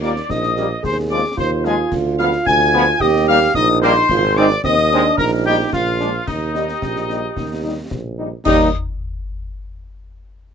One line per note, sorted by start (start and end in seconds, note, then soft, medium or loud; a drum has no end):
0.00 0.20 D#2 medium
0.00 0.12 G3 medium
0.00 0.12 A#3 medium
0.00 0.12 D#4 medium
0.00 0.14 F4 medium
0.00 0.27 D5 medium
0.00 0.32 D5 loud
0.00 0.09 D6 medium
0.00 snare medium
0.16 snare medium
0.29 0.75 A#1 medium
0.29 0.54 D#4 medium
0.29 0.81 D#5 medium
0.29 0.85 D#5 loud
0.29 0.80 D#6 medium
0.29 concert bass drum medium
0.29 snare medium
0.43 snare medium
0.55 0.67 G3 medium
0.55 0.67 A#3 medium
0.55 0.67 D#4 medium
0.55 0.68 G4 medium
0.55 snare medium
0.83 1.25 D#2 medium
0.83 1.34 G#4 loud
0.83 0.97 C5 medium
0.83 0.97 C5 loud
0.83 0.91 C6 medium
0.83 concert bass drum medium
0.83 snare medium
1.10 1.20 F3 medium
1.10 1.21 G#3 medium
1.10 1.22 G#3 medium
1.10 1.22 C4 medium
1.10 1.22 F4 medium
1.10 1.23 D5 medium
1.10 1.25 D5 medium
1.10 1.37 D6 loud
1.37 1.84 D#2 medium
1.37 2.97 F4 loud
1.37 1.63 C5 medium
1.37 1.51 C5 loud
1.37 1.45 C6 medium
1.37 concert bass drum medium
1.37 snare medium
1.65 1.75 F3 medium
1.65 1.74 G#3 medium
1.65 1.75 G#3 medium
1.65 1.75 C4 medium
1.65 1.75 F4 medium
1.65 1.93 G#4 medium
1.65 1.79 G#4 loud
1.65 1.91 G#5 medium
1.65 snare soft
1.92 2.38 D2 medium
1.92 concert bass drum medium
1.92 snare medium
1.92 crash soft
2.19 2.29 F3 loud
2.19 2.29 G#3 medium
2.19 2.29 B3 medium
2.19 2.29 F4 medium
2.19 2.31 F5 loud
2.19 2.46 F5 loud
2.19 2.25 F6 medium
2.19 snare medium
2.32 snare medium
2.46 2.92 D2 loud
2.46 2.98 G#5 loud
2.46 3.03 G#5 loud
2.46 2.97 G#6 loud
2.46 concert bass drum medium
2.46 snare medium
2.60 snare medium
2.73 2.84 F3 loud
2.73 2.84 G#3 medium
2.73 2.84 B3 medium
2.73 2.84 B3 loud
2.73 2.84 F4 medium
2.73 snare medium
3.00 3.47 D#2 loud
3.00 3.52 G4 loud
3.00 3.28 D#5 loud
3.00 3.29 D#5 loud
3.00 3.07 D#6 loud
3.00 concert bass drum medium
3.00 snare medium
3.27 3.38 G3 medium
3.27 3.38 G3 loud
3.27 3.38 A#3 medium
3.27 3.38 A#3 loud
3.27 3.38 D#4 medium
3.27 3.41 F5 loud
3.27 3.54 F5 loud
3.27 3.54 F6 loud
3.54 4.01 A#1 loud
3.54 4.07 D#4 loud
3.54 3.68 D#5 loud
3.54 3.69 D#5 loud
3.54 3.81 D#6 loud
3.54 concert bass drum medium
3.54 snare medium
3.82 3.93 G3 medium
3.82 3.93 G3 loud
3.82 3.93 A#3 medium
3.82 3.93 A#3 loud
3.82 3.93 D#4 medium
3.82 4.33 C5 loud
3.82 4.40 C5 loud
3.82 4.38 C6 loud
3.82 snare medium
4.09 4.56 G#1 loud
4.09 4.23 F4 loud
4.09 concert bass drum loud
4.09 snare medium
4.09 crash soft
4.36 4.47 G#3 loud
4.36 4.47 G#3 medium
4.36 4.47 C4 loud
4.36 4.48 C4 medium
4.36 4.47 D#4 medium
4.36 4.50 D#4 loud
4.36 4.64 D5 loud
4.36 4.51 D5 loud
4.36 4.63 D6 loud
4.36 snare medium
4.50 snare medium
4.64 5.10 D#2 loud
4.64 4.77 C4 loud
4.64 5.15 D#5 loud
4.64 5.16 D#5 loud
4.64 5.15 D#6 loud
4.64 concert bass drum medium
4.64 snare medium
4.78 snare medium
4.91 5.02 G#3 medium
4.91 5.02 G#3 loud
4.91 5.02 C4 medium
4.91 5.02 C4 loud
4.91 5.21 D4 loud
4.91 5.02 D#4 medium
4.91 snare medium
5.17 5.65 A#1 loud
5.17 5.75 D#4 loud
5.17 5.44 A#4 loud
5.17 5.31 A#4 loud
5.17 5.25 A#5 loud
5.17 concert bass drum medium
5.17 snare medium
5.45 5.56 G3 medium
5.45 5.56 G3 loud
5.45 5.56 A#3 medium
5.45 5.56 D#4 medium
5.45 5.72 G4 loud
5.45 5.72 G4 medium
5.45 5.71 G5 loud
5.73 6.19 A#1 medium
5.73 6.24 F4 loud
5.73 6.25 F4 medium
5.73 6.09 F4 loud
5.73 6.29 F5 medium
5.73 concert bass drum medium
5.73 snare medium
6.00 6.10 G#3 medium
6.00 6.11 G#3 medium
6.00 6.11 A#3 medium
6.00 6.10 D4 medium
6.00 6.11 D4 medium
6.00 snare medium
6.27 6.74 D#2 medium
6.27 7.87 D#4 medium
6.27 7.88 D#4 medium
6.27 8.15 G4 medium
6.27 7.91 D#5 medium
6.27 concert bass drum medium
6.27 snare medium
6.27 crash soft
6.53 6.64 G3 medium
6.53 6.65 G3 medium
6.53 6.65 A#3 medium
6.53 6.64 D#4 medium
6.53 6.66 D#4 medium
6.53 snare medium
6.69 snare medium
6.82 7.28 A#1 medium
6.82 concert bass drum medium
6.82 snare medium
6.96 snare medium
7.10 7.19 G3 medium
7.10 7.21 G3 medium
7.10 7.21 A#3 medium
7.10 7.19 D#4 medium
7.10 7.21 D#4 medium
7.10 snare soft
7.37 7.83 D#2 medium
7.37 concert bass drum medium
7.37 snare medium
7.63 7.73 G3 medium
7.63 7.74 G3 medium
7.63 7.74 A#3 medium
7.63 7.74 D#4 medium
7.91 8.33 A#1 medium
7.91 concert bass drum medium
7.91 snare medium
8.18 8.28 G3 medium
8.18 8.29 G3 medium
8.18 8.29 A#3 medium
8.18 8.28 D#4 medium
8.18 8.30 D#4 soft
8.45 8.70 D#2 loud
8.45 8.69 G3 loud
8.45 8.69 A#3 medium
8.45 8.68 D#4 loud
8.45 8.69 D#4 loud
8.45 8.69 D#5 loud
8.45 8.77 D#6 medium
8.45 concert bass drum loud
8.45 snare medium
8.45 crash medium